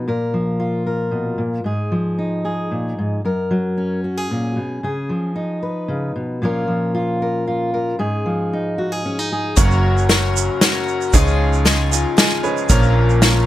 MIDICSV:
0, 0, Header, 1, 6, 480
1, 0, Start_track
1, 0, Key_signature, 6, "major"
1, 0, Tempo, 529101
1, 57, Time_signature, 3, 2, 24, 8
1, 6777, Tempo, 522193
1, 12285, End_track
2, 0, Start_track
2, 0, Title_t, "Twelve-string acoustic guitar"
2, 0, Program_c, 0, 25
2, 8701, Note_on_c, 0, 54, 92
2, 8707, Note_on_c, 0, 61, 89
2, 8707, Note_on_c, 0, 66, 84
2, 8713, Note_on_c, 0, 70, 92
2, 9173, Note_off_c, 0, 54, 0
2, 9183, Note_off_c, 0, 66, 0
2, 9184, Note_on_c, 0, 54, 68
2, 9186, Note_off_c, 0, 61, 0
2, 9189, Note_on_c, 0, 61, 81
2, 9192, Note_off_c, 0, 70, 0
2, 9194, Note_on_c, 0, 66, 73
2, 9204, Note_on_c, 0, 70, 77
2, 9655, Note_off_c, 0, 54, 0
2, 9666, Note_on_c, 0, 54, 70
2, 9667, Note_off_c, 0, 66, 0
2, 9668, Note_off_c, 0, 61, 0
2, 9672, Note_on_c, 0, 61, 81
2, 9674, Note_off_c, 0, 70, 0
2, 9678, Note_on_c, 0, 66, 86
2, 9685, Note_on_c, 0, 70, 87
2, 10147, Note_off_c, 0, 54, 0
2, 10147, Note_on_c, 0, 49, 93
2, 10151, Note_off_c, 0, 61, 0
2, 10152, Note_on_c, 0, 56, 98
2, 10153, Note_off_c, 0, 66, 0
2, 10154, Note_on_c, 0, 63, 89
2, 10157, Note_off_c, 0, 70, 0
2, 10159, Note_on_c, 0, 65, 93
2, 10161, Note_on_c, 0, 68, 103
2, 10607, Note_off_c, 0, 56, 0
2, 10616, Note_off_c, 0, 63, 0
2, 10618, Note_on_c, 0, 56, 75
2, 10624, Note_off_c, 0, 68, 0
2, 10626, Note_off_c, 0, 49, 0
2, 10627, Note_off_c, 0, 65, 0
2, 10627, Note_on_c, 0, 63, 78
2, 10631, Note_on_c, 0, 65, 75
2, 10635, Note_on_c, 0, 68, 81
2, 10849, Note_off_c, 0, 68, 0
2, 10856, Note_off_c, 0, 65, 0
2, 10860, Note_on_c, 0, 68, 62
2, 10862, Note_off_c, 0, 56, 0
2, 10866, Note_off_c, 0, 63, 0
2, 10867, Note_on_c, 0, 65, 52
2, 10877, Note_on_c, 0, 63, 50
2, 11091, Note_off_c, 0, 63, 0
2, 11094, Note_on_c, 0, 56, 79
2, 11096, Note_off_c, 0, 65, 0
2, 11102, Note_off_c, 0, 68, 0
2, 11102, Note_on_c, 0, 63, 82
2, 11107, Note_on_c, 0, 65, 80
2, 11113, Note_on_c, 0, 68, 79
2, 11578, Note_off_c, 0, 56, 0
2, 11578, Note_on_c, 0, 46, 96
2, 11582, Note_off_c, 0, 63, 0
2, 11582, Note_on_c, 0, 53, 92
2, 11585, Note_on_c, 0, 58, 99
2, 11586, Note_off_c, 0, 65, 0
2, 11586, Note_off_c, 0, 68, 0
2, 11589, Note_on_c, 0, 61, 99
2, 11590, Note_on_c, 0, 65, 92
2, 11590, Note_on_c, 0, 70, 98
2, 12046, Note_off_c, 0, 58, 0
2, 12057, Note_off_c, 0, 61, 0
2, 12057, Note_on_c, 0, 58, 64
2, 12058, Note_off_c, 0, 46, 0
2, 12060, Note_on_c, 0, 61, 68
2, 12063, Note_off_c, 0, 65, 0
2, 12064, Note_off_c, 0, 70, 0
2, 12066, Note_on_c, 0, 65, 76
2, 12074, Note_on_c, 0, 70, 72
2, 12285, Note_off_c, 0, 53, 0
2, 12285, Note_off_c, 0, 58, 0
2, 12285, Note_off_c, 0, 61, 0
2, 12285, Note_off_c, 0, 65, 0
2, 12285, Note_off_c, 0, 70, 0
2, 12285, End_track
3, 0, Start_track
3, 0, Title_t, "Steel-string acoustic guitar"
3, 0, Program_c, 1, 25
3, 0, Note_on_c, 1, 53, 41
3, 69, Note_on_c, 1, 46, 45
3, 75, Note_on_c, 1, 70, 42
3, 301, Note_off_c, 1, 53, 0
3, 305, Note_on_c, 1, 53, 42
3, 541, Note_on_c, 1, 65, 37
3, 774, Note_off_c, 1, 70, 0
3, 785, Note_on_c, 1, 70, 34
3, 1011, Note_on_c, 1, 47, 43
3, 1240, Note_off_c, 1, 46, 0
3, 1251, Note_on_c, 1, 46, 40
3, 1256, Note_off_c, 1, 47, 0
3, 1473, Note_off_c, 1, 65, 0
3, 1475, Note_off_c, 1, 53, 0
3, 1475, Note_off_c, 1, 70, 0
3, 1486, Note_off_c, 1, 46, 0
3, 1490, Note_on_c, 1, 44, 40
3, 1504, Note_on_c, 1, 68, 38
3, 1738, Note_on_c, 1, 53, 42
3, 1982, Note_on_c, 1, 63, 40
3, 2209, Note_off_c, 1, 68, 0
3, 2220, Note_on_c, 1, 68, 38
3, 2456, Note_off_c, 1, 44, 0
3, 2460, Note_on_c, 1, 46, 38
3, 2701, Note_off_c, 1, 46, 0
3, 2708, Note_on_c, 1, 44, 39
3, 2912, Note_off_c, 1, 53, 0
3, 2913, Note_off_c, 1, 68, 0
3, 2914, Note_off_c, 1, 63, 0
3, 2941, Note_off_c, 1, 44, 0
3, 2945, Note_on_c, 1, 42, 44
3, 2952, Note_on_c, 1, 70, 42
3, 3181, Note_on_c, 1, 54, 43
3, 3425, Note_on_c, 1, 61, 39
3, 3662, Note_off_c, 1, 70, 0
3, 3666, Note_on_c, 1, 66, 36
3, 3787, Note_off_c, 1, 66, 0
3, 3787, Note_on_c, 1, 68, 29
3, 3904, Note_off_c, 1, 42, 0
3, 3911, Note_on_c, 1, 46, 43
3, 4138, Note_on_c, 1, 47, 38
3, 4147, Note_off_c, 1, 46, 0
3, 4353, Note_off_c, 1, 54, 0
3, 4381, Note_off_c, 1, 47, 0
3, 4382, Note_off_c, 1, 68, 0
3, 4384, Note_on_c, 1, 49, 49
3, 4393, Note_on_c, 1, 68, 44
3, 4621, Note_on_c, 1, 53, 42
3, 4624, Note_off_c, 1, 49, 0
3, 4856, Note_off_c, 1, 61, 0
3, 4859, Note_on_c, 1, 63, 37
3, 5100, Note_off_c, 1, 68, 0
3, 5104, Note_on_c, 1, 71, 39
3, 5338, Note_on_c, 1, 49, 47
3, 5580, Note_off_c, 1, 49, 0
3, 5585, Note_on_c, 1, 47, 43
3, 5791, Note_off_c, 1, 63, 0
3, 5793, Note_off_c, 1, 71, 0
3, 5822, Note_on_c, 1, 46, 50
3, 5823, Note_off_c, 1, 47, 0
3, 5829, Note_off_c, 1, 53, 0
3, 5832, Note_on_c, 1, 53, 40
3, 5840, Note_on_c, 1, 61, 37
3, 5845, Note_on_c, 1, 65, 39
3, 5850, Note_on_c, 1, 70, 45
3, 6051, Note_off_c, 1, 53, 0
3, 6054, Note_on_c, 1, 53, 42
3, 6297, Note_off_c, 1, 65, 0
3, 6301, Note_on_c, 1, 65, 43
3, 6539, Note_off_c, 1, 70, 0
3, 6550, Note_on_c, 1, 70, 40
3, 6770, Note_off_c, 1, 65, 0
3, 6781, Note_on_c, 1, 65, 45
3, 7012, Note_off_c, 1, 70, 0
3, 7023, Note_on_c, 1, 70, 43
3, 7230, Note_off_c, 1, 53, 0
3, 7234, Note_off_c, 1, 46, 0
3, 7235, Note_off_c, 1, 65, 0
3, 7235, Note_off_c, 1, 70, 0
3, 7253, Note_on_c, 1, 44, 54
3, 7258, Note_on_c, 1, 68, 47
3, 7500, Note_on_c, 1, 53, 45
3, 7754, Note_on_c, 1, 63, 44
3, 7782, Note_off_c, 1, 61, 0
3, 7978, Note_off_c, 1, 68, 0
3, 7982, Note_on_c, 1, 66, 42
3, 8109, Note_off_c, 1, 66, 0
3, 8109, Note_on_c, 1, 68, 33
3, 8232, Note_off_c, 1, 63, 0
3, 8235, Note_on_c, 1, 61, 44
3, 8355, Note_off_c, 1, 61, 0
3, 8355, Note_on_c, 1, 63, 34
3, 8469, Note_off_c, 1, 68, 0
3, 8481, Note_on_c, 1, 68, 41
3, 8676, Note_off_c, 1, 44, 0
3, 8679, Note_off_c, 1, 53, 0
3, 8687, Note_off_c, 1, 68, 0
3, 8713, Note_off_c, 1, 63, 0
3, 12285, End_track
4, 0, Start_track
4, 0, Title_t, "Upright piano"
4, 0, Program_c, 2, 0
4, 8709, Note_on_c, 2, 42, 72
4, 8709, Note_on_c, 2, 54, 81
4, 8710, Note_on_c, 2, 61, 75
4, 8711, Note_on_c, 2, 30, 79
4, 8711, Note_on_c, 2, 58, 68
4, 8713, Note_on_c, 2, 73, 81
4, 8714, Note_on_c, 2, 70, 73
4, 8889, Control_c, 2, 64, 127
4, 10112, Note_off_c, 2, 42, 0
4, 10113, Note_off_c, 2, 30, 0
4, 10120, Note_off_c, 2, 54, 0
4, 10121, Note_off_c, 2, 58, 0
4, 10121, Note_off_c, 2, 61, 0
4, 10122, Note_off_c, 2, 70, 0
4, 10122, Note_off_c, 2, 73, 0
4, 10146, Note_on_c, 2, 49, 79
4, 10147, Note_on_c, 2, 68, 81
4, 10148, Note_on_c, 2, 61, 74
4, 10149, Note_on_c, 2, 53, 82
4, 10150, Note_on_c, 2, 63, 71
4, 10150, Note_on_c, 2, 73, 84
4, 10152, Note_on_c, 2, 37, 81
4, 10159, Control_c, 2, 64, 0
4, 10343, Control_c, 2, 64, 127
4, 11104, Note_on_c, 2, 80, 77
4, 11319, Note_off_c, 2, 68, 0
4, 11320, Note_off_c, 2, 53, 0
4, 11320, Note_off_c, 2, 61, 0
4, 11321, Note_off_c, 2, 63, 0
4, 11321, Note_off_c, 2, 73, 0
4, 11327, Note_off_c, 2, 80, 0
4, 11336, Note_on_c, 2, 73, 85
4, 11338, Note_on_c, 2, 63, 55
4, 11340, Note_on_c, 2, 68, 57
4, 11341, Note_on_c, 2, 61, 58
4, 11341, Note_on_c, 2, 71, 68
4, 11342, Note_on_c, 2, 53, 61
4, 11545, Note_off_c, 2, 49, 0
4, 11548, Note_off_c, 2, 37, 0
4, 11562, Note_off_c, 2, 73, 0
4, 11568, Note_off_c, 2, 61, 0
4, 11569, Note_off_c, 2, 53, 0
4, 11579, Note_on_c, 2, 58, 72
4, 11579, Note_on_c, 2, 70, 83
4, 11580, Note_off_c, 2, 63, 0
4, 11580, Note_on_c, 2, 34, 76
4, 11581, Note_off_c, 2, 68, 0
4, 11581, Note_on_c, 2, 46, 87
4, 11582, Note_off_c, 2, 71, 0
4, 11582, Note_on_c, 2, 61, 78
4, 11582, Note_on_c, 2, 73, 101
4, 11583, Note_on_c, 2, 53, 79
4, 11597, Control_c, 2, 64, 0
4, 11761, Control_c, 2, 64, 127
4, 12285, Note_off_c, 2, 34, 0
4, 12285, Note_off_c, 2, 46, 0
4, 12285, Note_off_c, 2, 53, 0
4, 12285, Note_off_c, 2, 58, 0
4, 12285, Note_off_c, 2, 61, 0
4, 12285, Note_off_c, 2, 70, 0
4, 12285, Note_off_c, 2, 73, 0
4, 12285, End_track
5, 0, Start_track
5, 0, Title_t, "Fingered electric bass"
5, 0, Program_c, 3, 33
5, 8707, Note_on_c, 3, 30, 107
5, 9544, Note_off_c, 3, 30, 0
5, 10144, Note_on_c, 3, 37, 105
5, 10979, Note_off_c, 3, 37, 0
5, 11581, Note_on_c, 3, 34, 102
5, 12285, Note_off_c, 3, 34, 0
5, 12285, End_track
6, 0, Start_track
6, 0, Title_t, "Drums"
6, 8708, Note_on_c, 9, 42, 75
6, 8708, Note_on_c, 9, 82, 110
6, 8710, Note_on_c, 9, 36, 109
6, 8800, Note_off_c, 9, 42, 0
6, 8800, Note_off_c, 9, 82, 0
6, 8802, Note_off_c, 9, 36, 0
6, 8836, Note_on_c, 9, 82, 33
6, 8928, Note_off_c, 9, 82, 0
6, 9080, Note_on_c, 9, 82, 30
6, 9172, Note_off_c, 9, 82, 0
6, 9189, Note_on_c, 9, 38, 89
6, 9189, Note_on_c, 9, 42, 63
6, 9281, Note_off_c, 9, 38, 0
6, 9281, Note_off_c, 9, 42, 0
6, 9439, Note_on_c, 9, 82, 100
6, 9531, Note_off_c, 9, 82, 0
6, 9667, Note_on_c, 9, 38, 88
6, 9667, Note_on_c, 9, 42, 71
6, 9678, Note_on_c, 9, 82, 35
6, 9758, Note_off_c, 9, 38, 0
6, 9758, Note_off_c, 9, 42, 0
6, 9770, Note_off_c, 9, 82, 0
6, 9912, Note_on_c, 9, 82, 32
6, 10003, Note_off_c, 9, 82, 0
6, 10032, Note_on_c, 9, 82, 32
6, 10124, Note_off_c, 9, 82, 0
6, 10144, Note_on_c, 9, 82, 92
6, 10148, Note_on_c, 9, 36, 108
6, 10148, Note_on_c, 9, 42, 67
6, 10236, Note_off_c, 9, 82, 0
6, 10239, Note_off_c, 9, 36, 0
6, 10240, Note_off_c, 9, 42, 0
6, 10271, Note_on_c, 9, 82, 34
6, 10363, Note_off_c, 9, 82, 0
6, 10510, Note_on_c, 9, 82, 30
6, 10601, Note_off_c, 9, 82, 0
6, 10624, Note_on_c, 9, 38, 87
6, 10624, Note_on_c, 9, 42, 61
6, 10716, Note_off_c, 9, 38, 0
6, 10716, Note_off_c, 9, 42, 0
6, 10873, Note_on_c, 9, 82, 98
6, 10964, Note_off_c, 9, 82, 0
6, 11106, Note_on_c, 9, 82, 33
6, 11107, Note_on_c, 9, 38, 103
6, 11107, Note_on_c, 9, 42, 72
6, 11198, Note_off_c, 9, 38, 0
6, 11198, Note_off_c, 9, 42, 0
6, 11198, Note_off_c, 9, 82, 0
6, 11344, Note_on_c, 9, 82, 32
6, 11436, Note_off_c, 9, 82, 0
6, 11465, Note_on_c, 9, 82, 34
6, 11557, Note_off_c, 9, 82, 0
6, 11580, Note_on_c, 9, 82, 111
6, 11581, Note_on_c, 9, 42, 70
6, 11582, Note_on_c, 9, 36, 124
6, 11672, Note_off_c, 9, 82, 0
6, 11673, Note_off_c, 9, 42, 0
6, 11674, Note_off_c, 9, 36, 0
6, 11703, Note_on_c, 9, 82, 34
6, 11795, Note_off_c, 9, 82, 0
6, 11947, Note_on_c, 9, 82, 30
6, 12039, Note_off_c, 9, 82, 0
6, 12061, Note_on_c, 9, 38, 92
6, 12061, Note_on_c, 9, 42, 64
6, 12153, Note_off_c, 9, 38, 0
6, 12153, Note_off_c, 9, 42, 0
6, 12285, End_track
0, 0, End_of_file